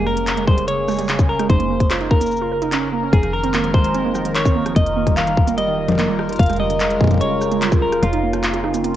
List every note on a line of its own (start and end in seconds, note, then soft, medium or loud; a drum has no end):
0.00 1.48 F1 medium
0.00 3.13 C#3 medium
0.00 3.78 A#3 medium
0.07 0.14 C#3 medium
0.07 0.47 A#4 loud
0.17 0.24 C#3 medium
0.17 closed hi-hat medium
0.27 2.15 G#4 medium
0.27 clap loud
0.27 closed hi-hat medium
0.37 0.42 G#3 loud
0.37 closed hi-hat soft
0.47 0.57 G3 loud
0.47 0.67 C5 loud
0.47 kick loud
0.47 cross-stick medium
0.58 0.65 C#3 medium
0.58 closed hi-hat medium
0.68 0.75 C#3 medium
0.68 1.29 C#5 loud
0.68 closed hi-hat medium
0.88 0.93 G#3 loud
0.88 cross-stick medium
0.88 cabasa medium
0.91 cabasa soft
0.94 cabasa soft
0.96 1.08 G3 loud
0.96 closed hi-hat medium
0.96 cabasa soft
0.99 cabasa soft
1.01 cabasa soft
1.06 1.16 C#3 medium
1.06 clap loud
1.06 closed hi-hat medium
1.06 cabasa soft
1.19 1.26 C#3 medium
1.19 kick loud
1.19 cabasa medium
1.29 1.48 A#4 loud
1.39 1.44 G#3 loud
1.39 cross-stick medium
1.39 closed hi-hat medium
1.49 3.11 F1 medium
1.49 1.59 D#4 loud
1.49 2.10 C5 loud
1.49 kick loud
1.49 closed hi-hat medium
1.60 1.67 A#3 medium
1.60 closed hi-hat soft
1.70 1.77 A#3 medium
1.70 5.28 A#4 medium
1.80 kick medium
1.80 closed hi-hat medium
1.90 1.95 F4 loud
1.90 clap loud
1.90 closed hi-hat medium
2.01 2.10 D#4 loud
2.01 closed hi-hat soft
2.11 2.18 A#3 medium
2.11 2.88 A#4 loud
2.11 kick loud
2.21 2.28 A#3 medium
2.21 closed hi-hat medium
2.21 cabasa medium
2.26 cabasa soft
2.31 cabasa soft
2.36 cabasa soft
2.41 2.46 F4 loud
2.52 2.59 A#4 medium
2.62 2.69 D#4 loud
2.62 closed hi-hat medium
2.72 2.79 C#4 loud
2.72 clap loud
2.72 closed hi-hat medium
2.92 2.97 A#3 medium
3.03 3.10 C#4 medium
3.13 4.74 F1 medium
3.13 6.39 D#3 medium
3.13 3.20 F3 medium
3.13 3.32 G#4 loud
3.13 kick loud
3.13 closed hi-hat medium
3.23 3.30 F3 medium
3.23 cross-stick soft
3.23 closed hi-hat soft
3.32 4.76 G#3 medium
3.32 8.96 F4 medium
3.32 3.74 A#4 loud
3.43 3.48 C4 loud
3.43 closed hi-hat medium
3.54 3.63 A#3 loud
3.54 clap loud
3.54 closed hi-hat medium
3.64 3.71 F3 medium
3.64 closed hi-hat soft
3.74 3.81 F3 medium
3.74 4.35 C5 loud
3.74 kick loud
3.74 cross-stick soft
3.84 closed hi-hat medium
3.94 3.99 C4 loud
3.94 closed hi-hat medium
4.05 4.14 A#3 loud
4.15 4.22 F3 medium
4.15 cross-stick medium
4.15 cabasa medium
4.25 4.32 F3 medium
4.25 closed hi-hat medium
4.35 4.76 C#5 loud
4.35 clap loud
4.35 closed hi-hat medium
4.45 4.50 C4 loud
4.45 kick loud
4.45 cabasa medium
4.56 4.65 A#3 loud
4.66 4.73 F3 medium
4.66 cross-stick medium
4.66 closed hi-hat soft
4.76 6.37 F1 medium
4.76 4.83 D#3 medium
4.76 5.17 D#5 loud
4.76 kick loud
4.76 closed hi-hat medium
4.86 6.39 G3 medium
4.86 closed hi-hat soft
4.97 5.01 A#3 loud
5.07 5.16 G3 loud
5.07 kick medium
5.07 closed hi-hat medium
5.17 5.24 D#3 medium
5.17 5.57 F5 loud
5.17 clap loud
5.17 closed hi-hat medium
5.27 5.34 D#3 medium
5.27 8.96 A#4 medium
5.27 closed hi-hat soft
5.37 kick loud
5.48 5.52 A#3 loud
5.48 closed hi-hat soft
5.48 cabasa medium
5.58 5.67 G3 loud
5.58 6.15 D#5 loud
5.58 closed hi-hat medium
5.68 5.75 D#3 medium
5.78 5.85 D#3 medium
5.88 closed hi-hat soft
5.88 low conga medium
5.92 low conga medium
5.95 6.03 A#3 loud
5.95 clap loud
5.95 closed hi-hat medium
5.95 low conga medium
5.99 low conga soft
6.02 low conga soft
6.05 6.18 G3 loud
6.05 low conga soft
6.19 6.26 D#3 medium
6.19 cross-stick medium
6.29 6.36 D#3 medium
6.29 closed hi-hat soft
6.33 closed hi-hat soft
6.36 8.01 F1 medium
6.36 6.59 F5 loud
6.36 closed hi-hat soft
6.39 8.96 C#3 loud
6.39 kick loud
6.39 closed hi-hat medium
6.43 closed hi-hat soft
6.46 6.54 G#3 loud
6.46 cross-stick soft
6.46 closed hi-hat soft
6.50 closed hi-hat soft
6.53 closed hi-hat soft
6.56 6.69 G3 loud
6.56 8.03 G#3 medium
6.56 7.17 D#5 loud
6.56 closed hi-hat soft
6.70 6.77 C#3 medium
6.70 closed hi-hat medium
6.80 6.88 C#3 medium
6.80 clap loud
6.80 closed hi-hat medium
6.90 closed hi-hat soft
7.01 7.05 G#3 loud
7.01 kick loud
7.04 kick medium
7.07 kick medium
7.07 closed hi-hat medium
7.11 7.21 G3 loud
7.11 kick medium
7.14 kick soft
7.18 7.28 C#3 medium
7.18 7.82 C#5 loud
7.18 kick soft
7.18 closed hi-hat medium
7.31 7.39 C#3 medium
7.41 cross-stick medium
7.41 cabasa medium
7.52 7.56 G#3 loud
7.52 closed hi-hat medium
7.62 7.72 G3 loud
7.62 clap loud
7.62 closed hi-hat medium
7.72 7.79 C#3 medium
7.72 kick loud
7.72 cabasa medium
7.82 7.90 C#3 medium
7.82 8.03 A#4 medium
7.92 cross-stick medium
7.92 closed hi-hat soft
8.03 8.96 F1 medium
8.03 8.96 F4 medium
8.03 8.07 F4 loud
8.03 closed hi-hat medium
8.13 8.23 D#4 loud
8.13 closed hi-hat soft
8.22 8.30 A#3 medium
8.22 8.96 C4 medium
8.33 8.41 A#3 medium
8.33 cross-stick medium
8.33 closed hi-hat medium
8.43 clap loud
8.43 closed hi-hat medium
8.54 8.58 F4 loud
8.54 closed hi-hat soft
8.64 8.74 D#4 loud
8.64 cross-stick medium
8.74 8.81 A#3 medium
8.74 closed hi-hat medium
8.74 cabasa medium
8.84 8.92 A#3 medium
8.84 closed hi-hat medium